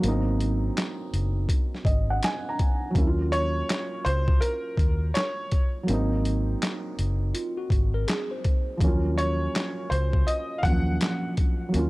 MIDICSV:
0, 0, Header, 1, 6, 480
1, 0, Start_track
1, 0, Tempo, 731707
1, 16, Time_signature, 4, 2, 24, 8
1, 7804, End_track
2, 0, Start_track
2, 0, Title_t, "Upright piano"
2, 0, Program_c, 0, 0
2, 2178, Note_on_c, 0, 73, 114
2, 2655, Note_on_c, 0, 72, 98
2, 2672, Note_off_c, 0, 73, 0
2, 2879, Note_off_c, 0, 72, 0
2, 2891, Note_on_c, 0, 70, 86
2, 3373, Note_on_c, 0, 73, 91
2, 3388, Note_off_c, 0, 70, 0
2, 3742, Note_off_c, 0, 73, 0
2, 6019, Note_on_c, 0, 73, 97
2, 6494, Note_on_c, 0, 72, 83
2, 6512, Note_off_c, 0, 73, 0
2, 6735, Note_on_c, 0, 75, 87
2, 6742, Note_off_c, 0, 72, 0
2, 6942, Note_on_c, 0, 77, 69
2, 6949, Note_off_c, 0, 75, 0
2, 6974, Note_on_c, 0, 78, 98
2, 6976, Note_off_c, 0, 77, 0
2, 7429, Note_off_c, 0, 78, 0
2, 7804, End_track
3, 0, Start_track
3, 0, Title_t, "Tine electric piano"
3, 0, Program_c, 1, 4
3, 4816, Note_on_c, 1, 65, 71
3, 4962, Note_off_c, 1, 65, 0
3, 4969, Note_on_c, 1, 66, 85
3, 5198, Note_off_c, 1, 66, 0
3, 5210, Note_on_c, 1, 70, 87
3, 5292, Note_off_c, 1, 70, 0
3, 5297, Note_on_c, 1, 68, 87
3, 5443, Note_off_c, 1, 68, 0
3, 5452, Note_on_c, 1, 72, 67
3, 5761, Note_off_c, 1, 72, 0
3, 7804, End_track
4, 0, Start_track
4, 0, Title_t, "Felt piano"
4, 0, Program_c, 2, 0
4, 0, Control_c, 2, 64, 127
4, 0, Note_on_c, 2, 54, 73
4, 10, Note_on_c, 2, 58, 70
4, 24, Control_c, 2, 64, 0
4, 31, Note_on_c, 2, 59, 59
4, 54, Note_on_c, 2, 63, 84
4, 74, Note_on_c, 2, 60, 74
4, 79, Note_off_c, 2, 59, 0
4, 122, Control_c, 2, 64, 127
4, 1215, Note_on_c, 2, 75, 63
4, 1359, Note_off_c, 2, 75, 0
4, 1380, Note_on_c, 2, 78, 74
4, 1456, Note_off_c, 2, 78, 0
4, 1471, Note_on_c, 2, 80, 71
4, 1608, Note_off_c, 2, 80, 0
4, 1632, Note_on_c, 2, 82, 66
4, 1895, Note_off_c, 2, 54, 0
4, 1906, Note_on_c, 2, 54, 73
4, 1907, Note_off_c, 2, 58, 0
4, 1925, Note_off_c, 2, 82, 0
4, 1928, Note_on_c, 2, 58, 65
4, 1929, Note_off_c, 2, 63, 0
4, 1939, Note_off_c, 2, 60, 0
4, 1945, Control_c, 2, 64, 0
4, 1949, Note_on_c, 2, 61, 65
4, 1972, Note_on_c, 2, 64, 67
4, 2009, Note_off_c, 2, 64, 0
4, 2014, Note_on_c, 2, 65, 76
4, 2068, Control_c, 2, 64, 127
4, 3815, Note_off_c, 2, 54, 0
4, 3826, Note_off_c, 2, 58, 0
4, 3827, Note_on_c, 2, 54, 73
4, 3837, Note_off_c, 2, 61, 0
4, 3849, Note_on_c, 2, 58, 72
4, 3866, Control_c, 2, 64, 0
4, 3869, Note_off_c, 2, 65, 0
4, 3870, Note_on_c, 2, 60, 71
4, 3893, Note_on_c, 2, 63, 83
4, 3996, Control_c, 2, 64, 127
4, 5735, Note_off_c, 2, 54, 0
4, 5747, Note_off_c, 2, 58, 0
4, 5755, Note_on_c, 2, 53, 65
4, 5757, Note_off_c, 2, 60, 0
4, 5769, Note_off_c, 2, 63, 0
4, 5778, Note_on_c, 2, 58, 75
4, 5784, Control_c, 2, 64, 0
4, 5799, Note_on_c, 2, 54, 84
4, 5799, Note_on_c, 2, 61, 77
4, 5821, Note_off_c, 2, 53, 0
4, 5822, Note_on_c, 2, 65, 80
4, 5884, Control_c, 2, 64, 127
4, 6953, Note_off_c, 2, 58, 0
4, 6964, Note_off_c, 2, 54, 0
4, 6964, Note_off_c, 2, 61, 0
4, 6976, Note_off_c, 2, 65, 0
4, 6977, Note_on_c, 2, 54, 45
4, 6989, Note_on_c, 2, 58, 41
4, 7000, Note_on_c, 2, 61, 47
4, 7011, Note_on_c, 2, 53, 55
4, 7657, Note_off_c, 2, 54, 0
4, 7667, Note_on_c, 2, 54, 77
4, 7680, Note_off_c, 2, 58, 0
4, 7690, Note_on_c, 2, 58, 64
4, 7702, Note_off_c, 2, 61, 0
4, 7706, Control_c, 2, 64, 0
4, 7712, Note_on_c, 2, 61, 71
4, 7714, Note_off_c, 2, 53, 0
4, 7734, Note_on_c, 2, 65, 83
4, 7804, Note_off_c, 2, 54, 0
4, 7804, Note_off_c, 2, 58, 0
4, 7804, Note_off_c, 2, 61, 0
4, 7804, Note_off_c, 2, 65, 0
4, 7804, End_track
5, 0, Start_track
5, 0, Title_t, "Fingered electric bass"
5, 0, Program_c, 3, 33
5, 25, Note_on_c, 3, 32, 103
5, 453, Note_off_c, 3, 32, 0
5, 744, Note_on_c, 3, 30, 74
5, 957, Note_off_c, 3, 30, 0
5, 1216, Note_on_c, 3, 32, 82
5, 1432, Note_off_c, 3, 32, 0
5, 1940, Note_on_c, 3, 39, 95
5, 2370, Note_off_c, 3, 39, 0
5, 2663, Note_on_c, 3, 37, 80
5, 2876, Note_off_c, 3, 37, 0
5, 3136, Note_on_c, 3, 39, 92
5, 3352, Note_off_c, 3, 39, 0
5, 3864, Note_on_c, 3, 32, 113
5, 4292, Note_off_c, 3, 32, 0
5, 4585, Note_on_c, 3, 30, 79
5, 4797, Note_off_c, 3, 30, 0
5, 5056, Note_on_c, 3, 32, 76
5, 5272, Note_off_c, 3, 32, 0
5, 5779, Note_on_c, 3, 39, 108
5, 6210, Note_off_c, 3, 39, 0
5, 6502, Note_on_c, 3, 37, 82
5, 6715, Note_off_c, 3, 37, 0
5, 6977, Note_on_c, 3, 39, 87
5, 7193, Note_off_c, 3, 39, 0
5, 7703, Note_on_c, 3, 39, 110
5, 7804, Note_off_c, 3, 39, 0
5, 7804, End_track
6, 0, Start_track
6, 0, Title_t, "Drums"
6, 23, Note_on_c, 9, 42, 73
6, 88, Note_off_c, 9, 42, 0
6, 266, Note_on_c, 9, 42, 54
6, 331, Note_off_c, 9, 42, 0
6, 505, Note_on_c, 9, 42, 85
6, 511, Note_on_c, 9, 39, 77
6, 512, Note_on_c, 9, 38, 98
6, 571, Note_off_c, 9, 42, 0
6, 577, Note_off_c, 9, 38, 0
6, 577, Note_off_c, 9, 39, 0
6, 745, Note_on_c, 9, 42, 59
6, 811, Note_off_c, 9, 42, 0
6, 976, Note_on_c, 9, 36, 88
6, 981, Note_on_c, 9, 42, 77
6, 1042, Note_off_c, 9, 36, 0
6, 1046, Note_off_c, 9, 42, 0
6, 1145, Note_on_c, 9, 38, 30
6, 1211, Note_off_c, 9, 38, 0
6, 1213, Note_on_c, 9, 36, 85
6, 1223, Note_on_c, 9, 42, 55
6, 1278, Note_off_c, 9, 36, 0
6, 1289, Note_off_c, 9, 42, 0
6, 1460, Note_on_c, 9, 42, 89
6, 1470, Note_on_c, 9, 39, 77
6, 1471, Note_on_c, 9, 38, 106
6, 1526, Note_off_c, 9, 42, 0
6, 1536, Note_off_c, 9, 39, 0
6, 1537, Note_off_c, 9, 38, 0
6, 1701, Note_on_c, 9, 42, 47
6, 1703, Note_on_c, 9, 36, 91
6, 1766, Note_off_c, 9, 42, 0
6, 1769, Note_off_c, 9, 36, 0
6, 1936, Note_on_c, 9, 36, 111
6, 1939, Note_on_c, 9, 42, 69
6, 2002, Note_off_c, 9, 36, 0
6, 2005, Note_off_c, 9, 42, 0
6, 2183, Note_on_c, 9, 42, 57
6, 2249, Note_off_c, 9, 42, 0
6, 2423, Note_on_c, 9, 42, 84
6, 2429, Note_on_c, 9, 39, 82
6, 2430, Note_on_c, 9, 38, 105
6, 2489, Note_off_c, 9, 42, 0
6, 2495, Note_off_c, 9, 38, 0
6, 2495, Note_off_c, 9, 39, 0
6, 2665, Note_on_c, 9, 42, 57
6, 2730, Note_off_c, 9, 42, 0
6, 2807, Note_on_c, 9, 36, 97
6, 2872, Note_off_c, 9, 36, 0
6, 2899, Note_on_c, 9, 42, 73
6, 2965, Note_off_c, 9, 42, 0
6, 3132, Note_on_c, 9, 36, 85
6, 3144, Note_on_c, 9, 42, 53
6, 3198, Note_off_c, 9, 36, 0
6, 3210, Note_off_c, 9, 42, 0
6, 3380, Note_on_c, 9, 42, 91
6, 3390, Note_on_c, 9, 38, 104
6, 3390, Note_on_c, 9, 39, 83
6, 3445, Note_off_c, 9, 42, 0
6, 3455, Note_off_c, 9, 39, 0
6, 3456, Note_off_c, 9, 38, 0
6, 3618, Note_on_c, 9, 42, 46
6, 3622, Note_on_c, 9, 36, 93
6, 3683, Note_off_c, 9, 42, 0
6, 3688, Note_off_c, 9, 36, 0
6, 3859, Note_on_c, 9, 42, 74
6, 3924, Note_off_c, 9, 42, 0
6, 4102, Note_on_c, 9, 42, 56
6, 4168, Note_off_c, 9, 42, 0
6, 4343, Note_on_c, 9, 42, 83
6, 4348, Note_on_c, 9, 39, 80
6, 4349, Note_on_c, 9, 38, 99
6, 4408, Note_off_c, 9, 42, 0
6, 4414, Note_off_c, 9, 39, 0
6, 4415, Note_off_c, 9, 38, 0
6, 4583, Note_on_c, 9, 42, 62
6, 4649, Note_off_c, 9, 42, 0
6, 4819, Note_on_c, 9, 42, 74
6, 4885, Note_off_c, 9, 42, 0
6, 5052, Note_on_c, 9, 36, 85
6, 5063, Note_on_c, 9, 42, 55
6, 5118, Note_off_c, 9, 36, 0
6, 5129, Note_off_c, 9, 42, 0
6, 5300, Note_on_c, 9, 42, 90
6, 5310, Note_on_c, 9, 39, 84
6, 5311, Note_on_c, 9, 38, 103
6, 5365, Note_off_c, 9, 42, 0
6, 5376, Note_off_c, 9, 38, 0
6, 5376, Note_off_c, 9, 39, 0
6, 5540, Note_on_c, 9, 42, 49
6, 5543, Note_on_c, 9, 36, 90
6, 5605, Note_off_c, 9, 42, 0
6, 5608, Note_off_c, 9, 36, 0
6, 5776, Note_on_c, 9, 36, 110
6, 5780, Note_on_c, 9, 42, 77
6, 5842, Note_off_c, 9, 36, 0
6, 5845, Note_off_c, 9, 42, 0
6, 6025, Note_on_c, 9, 42, 56
6, 6091, Note_off_c, 9, 42, 0
6, 6266, Note_on_c, 9, 42, 82
6, 6271, Note_on_c, 9, 39, 80
6, 6272, Note_on_c, 9, 38, 102
6, 6331, Note_off_c, 9, 42, 0
6, 6337, Note_off_c, 9, 38, 0
6, 6337, Note_off_c, 9, 39, 0
6, 6507, Note_on_c, 9, 42, 56
6, 6572, Note_off_c, 9, 42, 0
6, 6648, Note_on_c, 9, 36, 100
6, 6713, Note_off_c, 9, 36, 0
6, 6742, Note_on_c, 9, 42, 79
6, 6807, Note_off_c, 9, 42, 0
6, 6974, Note_on_c, 9, 36, 85
6, 6986, Note_on_c, 9, 42, 57
6, 7039, Note_off_c, 9, 36, 0
6, 7051, Note_off_c, 9, 42, 0
6, 7221, Note_on_c, 9, 42, 90
6, 7231, Note_on_c, 9, 39, 84
6, 7232, Note_on_c, 9, 38, 102
6, 7287, Note_off_c, 9, 42, 0
6, 7297, Note_off_c, 9, 38, 0
6, 7297, Note_off_c, 9, 39, 0
6, 7460, Note_on_c, 9, 42, 46
6, 7464, Note_on_c, 9, 36, 92
6, 7526, Note_off_c, 9, 42, 0
6, 7529, Note_off_c, 9, 36, 0
6, 7701, Note_on_c, 9, 42, 76
6, 7767, Note_off_c, 9, 42, 0
6, 7804, End_track
0, 0, End_of_file